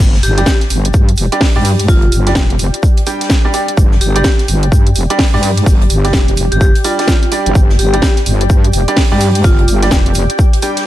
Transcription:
0.00 G1 G4, crash, shaker
0.14 snare
0.23 G1 G4, open hi-hat, shaker
0.38 G3 D4 G4 D5, closed hi-hat
0.46 kick, snare, shaker
0.61 snare, closed hi-hat
0.70 G1, open hi-hat, shaker
0.80 D5
0.85 closed hi-hat
0.94 G2, kick, shaker
1.06 G5, closed hi-hat
1.16 F1, open hi-hat, shaker
1.32 G3 D4 G4 D5, closed hi-hat
1.41 kick, snare, open hi-hat
1.56 G2 G3 D4 G4 D5
1.65 open hi-hat, shaker
1.79 closed hi-hat
1.88 G1 F4, kick, shaker
2.02 closed hi-hat
2.12 G1, open hi-hat, shaker
2.27 G3 D4 G4 D5, snare, closed hi-hat
2.35 F1, kick, snare, shaker
2.50 closed hi-hat
2.59 open hi-hat, shaker
2.74 closed hi-hat
2.83 kick, shaker
2.97 closed hi-hat
3.06 G3 D4 G4 G5, open hi-hat, shaker
3.21 snare, closed hi-hat
3.30 kick, snare, shaker
3.45 G3 D4 G4 D5
3.53 G3 D4 G4 D5, open hi-hat, shaker
3.68 closed hi-hat
3.77 G1, kick, shaker
3.92 snare
4.01 G1 G4, open hi-hat, shaker
4.16 G3 D4 G4 D5, closed hi-hat
4.24 kick, snare, shaker
4.39 snare, closed hi-hat
4.48 G1, open hi-hat, shaker
4.63 closed hi-hat
4.72 G2, kick, shaker
4.87 closed hi-hat
4.95 F1, open hi-hat, shaker
5.10 G3 D4 G4 D5, closed hi-hat
5.19 kick, snare, open hi-hat
5.34 G2 G3 D4 G4 D5
5.43 open hi-hat, shaker
5.57 closed hi-hat
5.66 G1, kick, shaker
5.82 closed hi-hat
5.90 G1, open hi-hat, shaker
6.05 G3 D4 G4 D5, snare, closed hi-hat
6.13 F1, kick, snare, shaker
6.28 closed hi-hat
6.37 open hi-hat, shaker
6.52 G1 G4, closed hi-hat
6.61 G4, kick, shaker
6.75 closed hi-hat
6.84 G3 D4 F4 G4 D5, open hi-hat, shaker
6.99 G3 D4 G4 D5, snare, closed hi-hat
7.08 kick, snare, shaker
7.23 closed hi-hat
7.32 G3 D4 G4 D5, open hi-hat, shaker
7.46 G1, closed hi-hat
7.55 G1, kick, shaker
7.70 snare
7.79 G1 G4, open hi-hat, shaker
7.94 G3 D4 G4 D5, closed hi-hat
8.02 kick, snare, shaker
8.17 snare, closed hi-hat
8.26 G1, open hi-hat, shaker
8.41 closed hi-hat
8.50 G2, kick, shaker
8.64 closed hi-hat
8.73 F1, open hi-hat, shaker
8.88 G3 D4 G4 D5, closed hi-hat
8.97 kick, snare, open hi-hat
9.12 G2 G3 D4 G4 D5
9.20 open hi-hat, shaker
9.35 closed hi-hat
9.44 G1 F4, kick, shaker
9.59 closed hi-hat
9.68 G1, open hi-hat, shaker
9.83 G3 D4 G4 D5, snare, closed hi-hat
9.91 F1, kick, snare, shaker
10.06 closed hi-hat
10.14 open hi-hat, shaker
10.30 closed hi-hat
10.39 kick, shaker
10.53 closed hi-hat
10.62 G3 D4 G4 G5, open hi-hat, shaker
10.77 snare, closed hi-hat

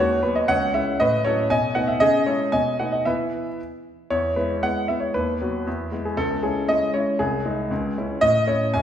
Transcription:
Already playing: D#2 C#5
0.00 F#4
0.23 F#3 B3 F#4 B4
0.35 D#5
0.48 C#2 C#5 F#5
0.74 G#3 C#4 E4 C#5 E5
1.00 A2 B4 D#5
1.25 F#3 C#4 E4 A4 C#5
1.50 B2 D#5 G#5
1.75 A3 B3 D#4 F#5
1.88 E5
2.00 C#3 G#4 D#5
2.26 G#3 E4 A4 C#5
2.52 B2 D#5 G#5
2.79 A3 B3 D#4 F#5
2.92 D#5
3.05 E3 B3 E4 B4 E5
4.10 E2 C#5
4.36 G#3 B3 E4 B4
4.63 G#3 B3 E4 F#5
4.88 G#3 B3 E4 E5
5.00 C#5
5.14 D#2 B4
5.42 F#3 B3 F#4
5.67 E2
5.92 G#3 B3 E4
6.05 G#4
6.17 C#2 A4
6.43 G#3 C#4 E4 G#4
6.68 G#3 C#4 E4 D#5
6.94 G#3 C#4 E4 C#5
7.19 C2 G#4
7.45 G#3 D#4
7.71 C#2
7.98 G#3 C#4 E4
8.21 A2 D#5
8.47 A3 C#4 E4 C#5
8.74 F#2 G#5

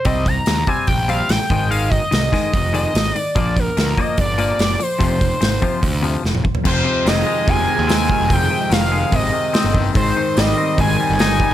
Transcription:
0.05 C2 C3 G3 C4 D#5, kick, open hi-hat
0.26 C3 G3 A#5, kick, open hi-hat
0.46 D#2 C3 G3, snare, open hi-hat
0.67 C3 G3 C4 G#5, kick, open hi-hat
0.87 A#1 C3 G3 G5, kick, open hi-hat
1.08 C3 G3 C4 F5, open hi-hat
1.29 A1 C3 G3 G5, snare, open hi-hat
1.50 G#1 G#2 D#3 G#3, kick, open hi-hat
1.69 G#2 D#3 G#3 F5, open hi-hat
1.90 G#2 D#3 D#5, kick, open hi-hat
2.11 C2 G#2 D#3, snare, open hi-hat
2.32 G#2 D#3 G#3, kick, snare, open hi-hat
2.53 F1 G#2, kick, open hi-hat
2.73 G#2 D#3 G#3 D#5, open hi-hat
2.94 G#1 G#2 D#3, snare, open hi-hat
3.16 G#2 D#3 D5, open hi-hat
3.35 A#1 A#2 F3 A#3 D5, kick, open hi-hat
3.56 A#2 F3 A#4, kick, open hi-hat
3.77 D2 A#2 F3, snare, open hi-hat
3.97 A#2 F3 A#3 D#5, kick, open hi-hat
4.18 G1 A#2 F3 D5, kick, open hi-hat
4.38 A#2 F3 A#3 D5, open hi-hat
4.59 F#1 A#2 F3, snare, open hi-hat
4.79 A#2 F3 C5, open hi-hat
4.99 F1 F2 C3 F3, kick, open hi-hat
5.19 F2 C3, kick, open hi-hat
5.41 G#1 F2 C3, snare, open hi-hat
5.62 F2 C3 F3, kick, open hi-hat
5.82 D2 F2 C3, kick, open hi-hat
6.02 F2 C3 F3, open hi-hat
6.23 F1 F2 C3, snare
6.35 mid tom
6.44 F2 C3, kick
6.55 floor tom
6.64 F1 F2 G#3 C4 F4 C5, kick, crash
6.84 C3
7.06 F1 D#3 D#5, snare, open hi-hat
7.26 G#3
7.46 F1 C3 G#5, kick, open hi-hat
7.67 D#3
7.79 D#2
7.87 C4 G#5, snare, open hi-hat
8.08 D#3, kick
8.20 F1
8.29 F1 F2 G5, kick, open hi-hat
8.50 C3
8.70 F1 D#3 F5, snare, open hi-hat
8.92 G#3
9.12 G#1 C3 D#5, kick, open hi-hat
9.33 D#3
9.53 C4, snare, open hi-hat
9.64 G1
9.73 D#3, kick
9.94 G#1 G#2 D#3 C4 D#4 C5 D#5, kick, open hi-hat
10.16 D#3
10.37 G#1 G3 D#5, snare, open hi-hat
10.58 C4
10.78 G#1 D#3 G#5, kick, open hi-hat
11.00 G3
11.10 G1
11.19 D#4 G#5, snare, open hi-hat
11.40 G3, kick
11.50 G#1

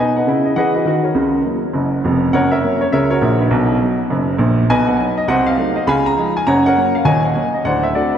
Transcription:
Already playing: B2
0.00 D#4 B4 D#5 G#5
0.16 B4 D#5 F#5
0.27 C#3 E4
0.45 D#5
0.56 E3 G#4 B4 D#5 F#5
0.74 F#4 B4 D#5
0.85 D#3 F#4
1.03 F#4 A#4 C#5
1.15 C#2 C#3
1.45 F#3 A#3 E4
1.73 F#1 F#2
2.04 F1 F2
2.33 F#1 F#2 A#4 C#5 F#5
2.51 A#4 C#5 E5
2.63 F#3 A#3 C#4
2.81 C#5
2.92 C#2 C#3 A#4 C#5 E5
3.10 F#4 A#4 C#5
3.22 A#1 A#2
3.40 D#4 F#4 B4
3.50 B1 B2
3.81 F#3 B3 D#4
4.10 F#1 F#2
4.38 A#1 A#2
4.70 B1 B2 B4 D#5 G#5
4.87 B4 D#5 F#5
4.99 F#3 B3 D#4
5.17 D#5
5.28 C2 C3 C5 D#5 F#5
5.46 F5
5.58 F#3 A3 D#4
5.76 D#5
5.87 C#2 C#3 F5 G#5 B5
6.06 A#5
6.17 F3 G#3 D#4
6.37 G#5
6.47 F#1 F#2 C#5 F#5 A#5
6.66 A#4 C#5 F#5
6.77 F#3 A#3 C#4
6.95 F5
7.05 D#1 D#2 C#5 D#5 G#5
7.25 C#5 D#5 F#5
7.35 F#3 A#3 C#4
7.54 D#5
7.65 D1 D2 C5 D5 F#5
7.83 E5
7.95 A3 C4 D4 F#4 A4 D5
8.15 B4

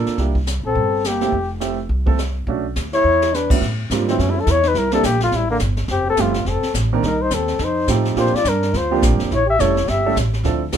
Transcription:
Already playing: A#3 D4 F4 A4
0.06 muted upright bass stroke, snare
0.18 C2 A#3 D4 E4 G4, brush sweep, kick, snare
0.35 kick
0.47 snare, hi-hat pedal
0.63 A#1 C4 A4
0.75 G1, brush sweep, kick
1.04 A#3 G4, snare, hi-hat pedal
1.21 A3 C4 E4 G4, snare
1.32 F1, brush sweep, kick
1.60 A3 C4 E4 G4, snare, hi-hat pedal
1.89 C2, brush sweep, kick
2.06 A3 C4 E4 A4, kick
2.19 snare, hi-hat pedal
2.47 B1 A3 C#4 D4 F#4, brush sweep, kick
2.76 D2, snare, hi-hat pedal
2.93 E4 C#5, snare
3.04 E2
3.22 snare
3.33 D4 B4, snare, hi-hat pedal
3.50 A2 F#3 B3 C#4 E4, kick, crash
3.61 A2, brush sweep, kick, snare
3.90 G#2 G3 A#3 C4 D4 F4, kick, snare, hi-hat pedal
4.07 D#3 F#3 A3 B3 C4 C#4 E4, snare
4.19 F#2 E3 C#4, brush sweep, kick, snare
4.28 G#3 E4
4.37 C#4 A4
4.46 E2 E4, kick, snare, hi-hat pedal
4.51 C#5
4.62 D#4, snare
4.68 B4
4.74 C2 E4 A#4, brush sweep, kick, snare
4.91 G3 A#3 C4 D4 E4 A4, snare
5.03 A#1 A#3 G4, kick, snare, hi-hat pedal
5.20 A3 F4, snare
5.32 A1 G3, brush sweep, kick, snare
5.36 E4
5.50 D3 A#3
5.59 G1, kick, snare, hi-hat pedal
5.77 snare
5.88 F1 C4 G4, brush sweep, kick, snare
6.07 C4 A4
6.17 G1 F3 A3 C4 E4 F4 G4, kick, snare, hi-hat pedal
6.34 snare
6.45 F1 C4 A4, brush sweep, kick, snare
6.63 muted upright bass stroke, snare
6.74 A1, kick, snare, hi-hat pedal
6.93 D#3 A#3 C4 D4 A#4
7.03 C2 D#4 A#4, brush sweep, kick, snare
7.21 D#4 C5
7.31 D#2 C4 A4, kick, snare, hi-hat pedal
7.48 snare
7.59 F2 D#4, brush sweep, kick, snare
7.64 C5
7.88 A2 F3 A3 C4 D#4 G4, kick, snare, hi-hat pedal
8.05 snare
8.16 A#2 F3 A#3 C4 D4 F4 G4 C5, brush sweep, kick, snare
8.26 snare
8.33 F4 D5, muted upright bass stroke, snare
8.45 G2 D4, kick, snare, hi-hat pedal
8.49 A#4
8.63 snare
8.74 D2 F4 C5, brush sweep, kick, snare
8.91 F3 A#3 C4 D4 G4
9.02 A#1, kick, snare, hi-hat pedal
9.13 G1
9.20 F1, snare
9.31 A1 E4 C#5, brush sweep, kick, snare
9.46 G4 E5
9.59 F1 G3 A3 C#4 E4 A4 C#5, kick, snare, hi-hat pedal
9.77 snare
9.88 G1 G4 E5, brush sweep, kick, snare
10.05 G3 A3 C#4 E4 A4
10.16 A1, kick, snare, hi-hat pedal
10.34 snare
10.44 D2 F3 C4 D4 E4 A4, brush sweep, kick, snare
10.72 A#1 F3 C4 D4 E4 A4, kick, snare, hi-hat pedal

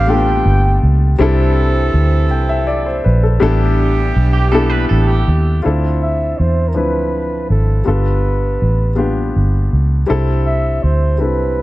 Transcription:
Already playing: A1 D3 G3 B3 D4 F4 G4 A4 F5
0.07 G3 A3 D4 F4 A4 G5
0.14 B3
0.46 G1
0.83 C#2
1.19 C2 E3 G3 C4 D4 E4 A4
1.94 D2
2.31 C2 G5
2.49 E5
2.67 D5
2.86 C5
3.04 A#1 B4
3.23 A4
3.40 A1 E3 G3 B3 D4 E4 G4 A4
4.16 B1
4.33 G4
4.52 G3 B3 D4 E4 A4
4.70 B4
4.89 A1 A4
5.07 G4
5.28 D#2
5.62 D2 C4 D4 E4 F4 A4
6.02 E5
6.39 E2 C5
6.68 A#4
6.74 D2 F3 C4 D4 E4 B4
7.50 G#1 A4
7.85 G1 G3 B3 D4 F4 A4 B4
8.62 A1
8.95 G3 B3 D4 F4 G4
9.36 G1
9.73 C#2
10.06 G3 C4 D4 E4 A4
10.11 C2
10.46 E5
10.83 D2 C5
11.18 C2 G3 C4 D4 E4 A4 B4

